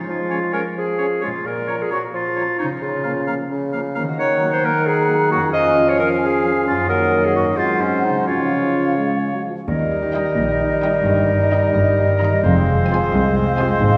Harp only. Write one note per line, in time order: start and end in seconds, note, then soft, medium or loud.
0.00 3.80 F3 soft
0.00 1.40 G#3 soft
0.00 1.34 F4 soft
0.00 1.39 C#5 soft
1.26 2.74 A#2 soft
1.31 2.66 A#3 soft
1.36 2.71 F4 soft
1.40 5.30 C#5 soft
2.63 4.11 C#3 medium
2.68 4.03 A#3 soft
2.72 4.15 F4 soft
2.77 4.12 A#4 soft
4.00 5.46 D#3 medium
4.04 5.48 A#3 soft
4.09 5.50 F#4 soft
4.13 5.52 A#4 soft
5.35 6.81 F2 medium
5.39 6.84 C#4 soft
5.44 6.86 F4 soft
5.48 6.88 G#4 soft
6.71 7.50 F#2 medium
6.75 7.53 A#3 soft
6.80 8.25 D#4 soft
6.84 7.51 F#4 soft
7.39 8.20 G#2 soft
7.44 8.13 G#3 soft
7.48 8.25 C4 soft
7.53 8.27 F#4 soft
8.10 9.61 C#3 soft
8.14 9.64 G#3 soft
8.18 9.66 C#4 soft
8.23 9.68 F4 soft
9.68 11.09 D#3 medium
9.79 10.70 A#3 soft
9.91 10.58 D#4 soft
10.02 11.50 G4 soft
10.14 10.47 A#4 soft
10.25 11.73 D#5 soft
10.37 12.46 G5 soft
10.49 11.61 A#4 soft
10.59 11.39 D#4 soft
10.72 10.93 A#3 soft
10.83 11.16 G3 soft
10.94 11.27 A#3 soft
11.05 12.45 G2 medium
11.17 12.08 G3 soft
11.29 11.96 A#3 soft
11.40 12.46 D#4 soft
11.51 11.85 G4 soft
11.62 12.45 A#4 soft
11.74 12.46 D#5 medium
11.86 12.45 G4 soft
11.98 12.46 A#3 soft
12.09 12.31 G3 soft
12.20 12.46 D#3 soft
12.32 12.46 G3 soft
12.44 13.82 F2 medium
12.55 13.45 G#3 soft
12.66 13.34 C4 medium
12.78 13.97 F4 soft
12.89 13.22 G#4 medium
13.00 13.97 C5 medium
13.12 13.97 F5 medium
13.23 13.97 G#4 soft
13.35 13.97 C4 medium
13.46 13.67 G#3 soft
13.57 13.82 C3 soft
13.69 13.90 G#3 medium
13.80 13.97 G#2 medium
13.91 13.97 G#3 soft